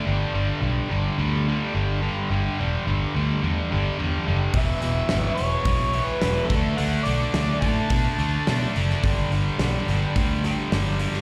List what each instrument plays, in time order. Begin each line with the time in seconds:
Already playing: distorted electric guitar D4
0.06 fingered electric bass G1, distorted electric guitar G2 D3 G3
0.33 fingered electric bass G1, distorted electric guitar G2 D3 G3
0.61 fingered electric bass B1, distorted electric guitar G2 D3 G3
0.90 fingered electric bass G1, distorted electric guitar G2 D3 G3
1.18 fingered electric bass D2, distorted electric guitar G2 D3 G3
1.47 distorted electric guitar G2 D3 G3
1.74 fingered electric bass G1, distorted electric guitar G2 D3 G3
2.02 distorted electric guitar G2 D3 G3
2.30 fingered electric bass G1, distorted electric guitar G2 D3 G3
2.58 fingered electric bass E1, distorted electric guitar G2 D3 G3
2.86 fingered electric bass G1, distorted electric guitar G2 D3 G3
3.15 fingered electric bass D2, distorted electric guitar G2 D3 G3
3.42 fingered electric bass E2, distorted electric guitar G2 D3 G3
3.70 fingered electric bass G1, distorted electric guitar G2 D3 G3
3.99 fingered electric bass E2, distorted electric guitar G2 D3 G3
4.26 fingered electric bass F#1, distorted electric guitar G2 D3 G3
4.54 fingered electric bass E1, distorted electric guitar E2 B2 E3, harmonica E5, kick, open hi-hat
4.81 fingered electric bass E1, distorted electric guitar E2 B2 E3, open hi-hat
5.09 distorted electric guitar E2 B2 E3, snare, open hi-hat
5.13 fingered electric bass G#1
5.35 distorted electric guitar E2 B2, harmonica C#5, open hi-hat
5.39 fingered electric bass E1, distorted electric guitar E3
5.65 fingered electric bass B1, distorted electric guitar E2 B2 E3, kick, open hi-hat
5.93 distorted electric guitar E2 B2 E3, open hi-hat
6.05 harmonica B4
6.21 fingered electric bass E1, distorted electric guitar E2 B2 E3, snare, open hi-hat
6.45 distorted electric guitar D3 A3, harmonica A4
6.50 fingered electric bass D2, distorted electric guitar D4, kick, open hi-hat
6.76 fingered electric bass D2, distorted electric guitar D3 A3 D4, harmonica F#5, open hi-hat
7.03 fingered electric bass B1, distorted electric guitar D3, harmonica D5, open hi-hat
7.07 distorted electric guitar A3 D4
7.33 fingered electric bass D2, distorted electric guitar D3 A3 D4, snare, open hi-hat
7.60 fingered electric bass A2, distorted electric guitar D3 A3 D4, harmonica A5, kick, open hi-hat
7.90 fingered electric bass B2, distorted electric guitar D3 A3 D4, kick, open hi-hat
8.18 fingered electric bass D2, distorted electric guitar D3 A3 D4, open hi-hat
8.47 fingered electric bass B2, distorted electric guitar D3 A3 D4, snare, open hi-hat
8.76 fingered electric bass F#1, distorted electric guitar D3 A3 D4, open hi-hat
8.90 snare
9.03 fingered electric bass G1, distorted electric guitar G2 D3 G3, kick, open hi-hat
9.31 fingered electric bass G1, distorted electric guitar G2 D3 G3, open hi-hat
9.58 fingered electric bass B1, distorted electric guitar G2 D3 G3, snare, open hi-hat
9.87 fingered electric bass G1, distorted electric guitar G2 D3 G3, open hi-hat
10.15 fingered electric bass D2, distorted electric guitar G2 D3 G3, kick, open hi-hat
10.44 distorted electric guitar G2 D3 G3, snare, open hi-hat
10.71 fingered electric bass G1, distorted electric guitar G2 D3 G3, snare, open hi-hat
10.99 distorted electric guitar G2 D3 G3, open hi-hat
11.14 snare